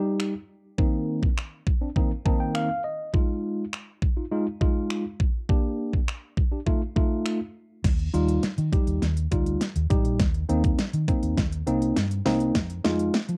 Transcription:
Already playing: G3 D#4 G4
0.20 finger snap
0.78 D#3 A#3 C4 D#4, kick
1.23 kick
1.38 finger snap
1.67 kick
1.81 C4 D4
1.96 D#3 A#3 C4 D#4, kick
2.25 D#3 A#3 C4 D#4 A5, kick
2.40 G5
2.55 F5, finger snap
2.84 D#5
3.14 G#3 D#4 F4, kick
3.73 finger snap
4.02 kick
4.17 D#4 F4
4.31 G#3 D#4 F4
4.61 G#3 D#4 F4, kick
4.90 finger snap
5.20 kick
5.49 A#3 D4 G4, kick
5.93 kick
6.08 finger snap
6.37 kick
6.52 D4 G4
6.67 A3 D#4 F4, kick
6.96 A3 D#4 F4, kick
7.26 finger snap
7.84 D#2, kick, snare, closed hi-hat, crash
7.99 closed hi-hat
8.14 D#2 G3 D#4 F4, closed hi-hat
8.29 closed hi-hat
8.43 muted fingered electric bass stroke, snare, closed hi-hat
8.58 D#3, closed hi-hat
8.72 G3 D#4 G4, kick, closed hi-hat
8.87 D#2, closed hi-hat
9.02 D#2, snare, closed hi-hat
9.17 closed hi-hat
9.31 D2 G3 D#4 F4, kick, closed hi-hat
9.46 closed hi-hat
9.61 snare, closed hi-hat
9.76 D#2, closed hi-hat
9.90 A1 G3 D#4 G4, kick, closed hi-hat
10.05 A#1, closed hi-hat
10.20 D#2, kick, snare, closed hi-hat
10.34 closed hi-hat
10.49 D#2 A#3 C4 D#4, closed hi-hat
10.64 kick, closed hi-hat
10.79 muted fingered electric bass stroke, snare, closed hi-hat
10.93 D#3, closed hi-hat
11.08 A#3 C4 D#4, kick, closed hi-hat
11.23 D#2, closed hi-hat
11.37 D#2, kick, snare, closed hi-hat
11.52 closed hi-hat
11.67 C2 A#3 C4 D#4, closed hi-hat
11.82 closed hi-hat
11.96 G2, snare, closed hi-hat
12.11 closed hi-hat
12.25 C2 A#3 C4 D#4, snare, open hi-hat
12.40 closed hi-hat
12.55 F2, kick, snare, closed hi-hat
12.70 closed hi-hat
12.84 F2 G#3 D#4 F4, snare, closed hi-hat
12.99 closed hi-hat
13.14 snare, closed hi-hat
13.29 F3, closed hi-hat

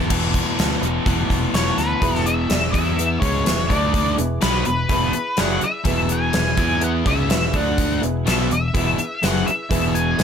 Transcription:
0.09 E1 E2 B2 E3 A3 E4 A4 B4, kick, crash
0.34 kick, closed hi-hat
0.59 D2, snare, closed hi-hat
0.80 E1 E3 A3 E4 A4 B4, closed hi-hat
1.05 E1 E2 B2 E3, kick, closed hi-hat
1.30 E1, kick, closed hi-hat
1.53 E1 E3 A3 E4 A4 B4 C#5, snare, closed hi-hat
1.77 D2 B4, snare, closed hi-hat
2.01 E1 E2 B2 E3 E4 G#4 B4, kick, closed hi-hat
2.15 snare
2.26 E5, closed hi-hat
2.48 E1 E2 B2 E4 G#4 D5, snare, closed hi-hat
2.72 E2 E3 B3 E4 E5, kick, closed hi-hat
2.98 E4 G#4 B4, closed hi-hat
3.20 C#2 C#3 G#3 C#4 C#5, kick, closed hi-hat
3.45 E1 E2 B2 E4 G#4 B4, snare, closed hi-hat
3.68 D2 D3 A3 D4 A4 D5, kick, closed hi-hat
3.94 kick, closed hi-hat
4.17 E1 E2 B2 E4 G#4 B4, closed hi-hat
4.41 B1 B2 F#3 B3 B4, snare, closed hi-hat
4.65 E1 E2 B2 B4, closed hi-hat
4.89 E1 E2 B2 E3 E4 G#4 B4, kick, closed hi-hat
5.13 muted overdriven electric guitar stroke, muted fingered electric bass stroke, closed hi-hat
5.36 F#1 F#2 C#3 F#3 E4 G#4 D5, snare, closed hi-hat
5.40 F#5
5.61 E5, muted overdriven electric guitar stroke, muted fingered electric bass stroke, closed hi-hat
5.84 E1 E2 B2 E3 E4 G#4 B4, kick, closed hi-hat
6.09 G#5, closed hi-hat
6.32 E1 E2 B2 E4 G#4 B4, snare, closed hi-hat
6.57 E2 E3 B3 E4 G#5, kick, closed hi-hat
6.81 E4 G#4 B4 F#5, closed hi-hat
7.04 C#2 C#3 G#3 C#4 E5, kick, closed hi-hat
7.28 E1 E2 B2 E4 G#4 B4, snare, closed hi-hat
7.53 D2 D3 A3 D4 A4 D5 F#5, kick, closed hi-hat
7.78 kick, closed hi-hat
8.01 E1 E2 B2 E4 G#4 B4, closed hi-hat
8.25 B1 B2 F#3 B3 E5, snare, closed hi-hat
8.50 E1 E2 B2 E5, closed hi-hat
8.74 E1 E2 B2 E3 E4 G#4 B4, kick, closed hi-hat
8.98 muted overdriven electric guitar stroke, muted fingered electric bass stroke, closed hi-hat
9.22 F#1 F#2 C#3 F#3 E4 G#4 B4 F#5, snare, closed hi-hat
9.46 E5, muted overdriven electric guitar stroke, muted fingered electric bass stroke, closed hi-hat
9.69 E1 E2 B2 E3 E4 G#4 B4, kick, closed hi-hat
9.95 G#5, closed hi-hat
10.16 E1 E2 B2 E4 G#4 B4, snare, closed hi-hat

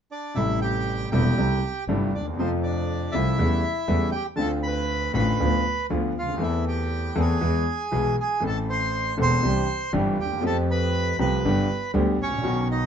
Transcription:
0.11 D4 D5
0.34 A1 A2 C3 G3 A3 E4 E5
0.39 E4
0.62 G4 G5
1.11 E1 E2 C3 G3 A3 E4 G4 G5
1.37 C2 C3 G3 A3 E4
1.88 G1 G2 C3 G3 A3 E4
2.13 D#2 D4 D5
2.20 D2
2.27 D#2
2.33 E2
2.37 F2 C3 F3 A3 C4 F4 C5
2.63 D4 D5
3.12 C2 C3 F3 A3 E4 F4 E5
3.39 E2 C#3 E3 G3 A3 E4
3.88 E2 C#3 E3 G3 A3 E4
4.12 G4 G5
4.36 D2 D3 A3 C4 A5
4.40 F4 A4
4.63 B4 B5
5.14 A1 A2 D3 A3 C4 F4 B4 B5
5.40 D2 D3 F3 B3 F4
5.90 D2 D3 F3 B3 F4
6.16 D2 F4 F5
6.23 C#2
6.28 D2
6.34 D#2 E3
6.39 E2 A3 C4 E4 A4 E5
6.68 G4 G5
7.15 E2 E3 A3 C4 A4
7.20 G#4 G#5
7.41 E2 E3 G#3 B3 G#4
7.92 B1 B2 E3 G#3 B3 G#4
8.20 G#4 G#5
8.40 A1 A2 E3 A3 C4 A4
8.47 A4 A5
8.70 C5 C6
9.17 E1 E2 E3 A3 C4 A4 C5
9.23 C6
9.43 C2 C3 E3 C4 D4 G4
9.93 G1 G2 E3 C4 D4 G4
10.19 D#2 G4 G5
10.25 D2
10.32 D#2
10.37 E2 F3
10.42 F2 A3 C4 G4
10.46 A4 A5
10.71 B4 B5
11.18 C2 C3 F3 A3 C4 G4 B4 B5
11.44 G1 G2 D3 G3 B3 G4
11.94 D2 D3 G3 B3 G4
12.20 A1 C#4 C#5
12.27 G#1
12.32 A1
12.38 A#1
12.43 B1 B2 D#3 F#3 B3 F#4
12.71 D#4 D#5

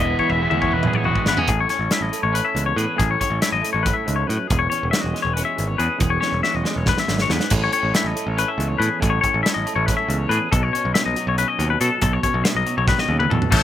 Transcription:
Already playing: E1 E2 E3 G#3 D#5
0.00 G#3 B3 E4 E5
0.19 E3 C#5, kick
0.30 E1 E5, kick
0.41 E3 G#3 B3 E4
0.50 E2 E5, mid tom
0.62 G#3 B3 C#4 E4 C#5, kick
0.72 E1 B4
0.83 mid tom
0.87 G#4
0.93 C#5, mid tom
1.04 E1 G#3 B3 E4 F#4
1.16 kick
1.25 G#1 E3 G#3 B3 E4 B4, snare
1.37 C#4 G#4, floor tom
1.48 A1 A2 G#4, kick, closed hi-hat
1.60 C#5
1.69 C#4 C#5, snare, closed hi-hat
1.79 A1
1.91 E4 E5, snare, closed hi-hat
2.01 A1 D#5
2.11 A3, closed hi-hat
2.23 A1 C#5
2.33 C#4 B4, closed hi-hat
2.45 E5
2.55 C#2 E2, closed hi-hat
2.66 C#5
2.76 A2 G#4 B4, closed hi-hat
2.96 A1 A2 G#4, kick, closed hi-hat
3.11 C#5
3.20 C#4 C#5, kick, closed hi-hat
3.30 A1
3.41 E4 E5, snare, closed hi-hat
3.52 A1 D#5
3.62 A3, closed hi-hat
3.73 A1 C#5
3.83 A2 B4, kick, closed hi-hat
3.94 E5
4.06 C#2 G#2, closed hi-hat
4.16 C#5
4.27 F#2 A2 B4, closed hi-hat
4.47 E1 E2 G#4, kick, closed hi-hat
4.59 C#5
4.70 C#4 C#5, closed hi-hat
4.83 E1
4.91 F#4 E5, snare, closed hi-hat
5.01 E1 D#5
5.14 G#3, snare, closed hi-hat
5.22 E1 C#5
5.33 C#4 B4, closed hi-hat
5.45 E5
5.57 G#1 E2, closed hi-hat
5.68 C#5
5.78 E2 G#4 B4, closed hi-hat
5.99 E1 E2 G#4, kick, closed hi-hat
6.10 C#5
6.20 C#4 C#5, snare
6.32 E1
6.43 F#4 E5, snare
6.55 E1 D#5
6.64 G#3, snare
6.76 E1 C#5
6.86 E2 B4, kick, snare
6.98 E5, snare
7.08 G#1 F#2, snare
7.19 C#5, snare
7.28 E2 G#2 B4, snare
7.40 snare
7.50 A1 A2 G#4, kick, closed hi-hat, crash
7.64 C#5
7.71 C#4 C#5, closed hi-hat
7.83 A1
7.94 E4 E5, snare, closed hi-hat
8.04 A1 D#5
8.15 A3, closed hi-hat
8.27 A1 C#5
8.37 C#4 B4, closed hi-hat
8.48 E5
8.58 C#2 E2, closed hi-hat
8.68 C#5
8.78 A2 G#4 B4, closed hi-hat
9.00 A1 A2 G#4, kick, closed hi-hat
9.10 C#5
9.21 C#4 C#5, kick, closed hi-hat
9.34 A1
9.43 E4 E5, snare, closed hi-hat
9.54 A1 D#5
9.66 A3, closed hi-hat
9.76 A1 C#5
9.86 C#4 B4, kick, snare, closed hi-hat
9.97 E5
10.08 C#2 E2, closed hi-hat
10.18 C#5
10.29 A2 G#4 B4, closed hi-hat
10.52 B1 B2 A4, kick, closed hi-hat
10.63 C#5
10.73 C#4 C#5, closed hi-hat
10.85 B1
10.94 D#4 E5, snare, closed hi-hat
11.06 B1 D#5
11.16 F#3, closed hi-hat
11.27 B1 C#5
11.38 C#4 B4, closed hi-hat
11.48 D#5
11.58 D#2 B2, closed hi-hat
11.70 B4
11.81 B2 A4, closed hi-hat
12.01 B1 B2 A4, kick, closed hi-hat
12.13 C#5
12.23 C#4 C#5, kick, closed hi-hat
12.34 B1
12.44 D#4 E5, snare, closed hi-hat
12.55 B1 D#5
12.66 F#3, closed hi-hat
12.78 B1 C#5
12.87 D#3 B4, kick, snare
12.99 D#5, snare
13.09 D#2 C#3
13.19 B4, mid tom
13.30 E2 B2 A4, mid tom
13.42 floor tom
13.51 A1 A2 E3 A3 C#4 E4 A4, kick, crash

